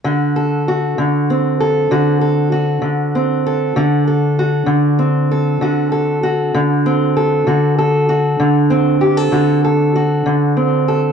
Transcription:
\new Staff \with { instrumentName = "Steel-string acoustic guitar" } { \time 12/8 \key d \phrygian \tempo 4. = 65 << { fis'8 a'8 fis'4 c'8 a'8 fis'8 a'8 fis'4 c'8 a'8 | fis'8 a'8 fis'4 c'8 a'8 fis'8 a'8 fis'4 c'8 a'8 | fis'8 a'8 fis'4 c'8 g'16 a'16 fis'8 a'8 fis'4 c'8 a'8 | } \\ { d4. d4. d4. d4. | d4. d4. d4. d4. | d4. d4. d4. d4. | } >> }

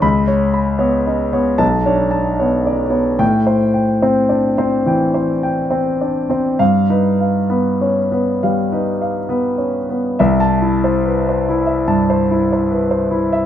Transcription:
<<
  \new Staff \with { instrumentName = "Grand piano" } { \time 4/4 \key c \major \tempo 4 = 72 << { b''8 r4. a''8 r4. | g''8 r2. r8 | f''8 r2. r8 | r16 a''8 r2. r16 | } \\ { \tuplet 3/2 { r8 des''8 b''8 des''8 ees''8 des''8 r8 cis''8 a''8 cis''8 d''8 cis''8 } | \tuplet 3/2 { r8 c''8 g''8 c''8 d''8 c''8 g''8 c''8 g''8 c''8 d''8 c''8 } | \tuplet 3/2 { r8 b'8 f''8 b'8 des''8 b'8 f''8 b'8 f''8 b'8 des''8 b'8 } | e''8 e'16 c''16 b'16 c''16 e'16 e''16 a''16 c''16 e'16 c''16 b'16 c''16 e'16 e''16 | } >> }
  \new Staff \with { instrumentName = "Grand piano" } { \time 4/4 \key c \major des,4 \tuplet 3/2 { b8 des'8 b8 b,,8 d'4 b8 cis'8 b8 } | a,4 \tuplet 3/2 { c'8 d'8 c'8 } e8 r8 \tuplet 3/2 { c'8 d'8 c'8 } | \tuplet 3/2 { g,8 dis'4 b8 des'8 b8 g8 dis'4 b8 des'8 b8 } | c,2 g,8 r4. | }
>>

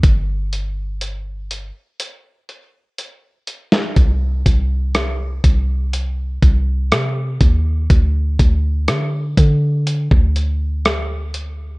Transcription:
<<
  \new Staff \with { instrumentName = "808-style bass" } { \clef bass \time 4/4 \key c \minor \tempo 4 = 61 g,,4.~ g,,16 r2 r16 | c,8 c,4 c,4 c,8 c8 ees,8 | d,8 d,8 d8 d8. d,4.~ d,16 | }
  \new DrumStaff \with { instrumentName = "Drums" } \drummode { \time 4/4 <hh bd>8 hh8 hh8 hh8 hh8 hh8 hh8 hh16 sn16 | <hh bd>8 <hh bd>8 <hh ss>8 <hh bd>8 hh8 <hh bd>8 <hh ss>8 <hh bd>8 | <hh bd>8 <hh bd>8 <hh ss>8 <hh bd>8 hh16 bd16 hh8 <hh ss>8 hh8 | }
>>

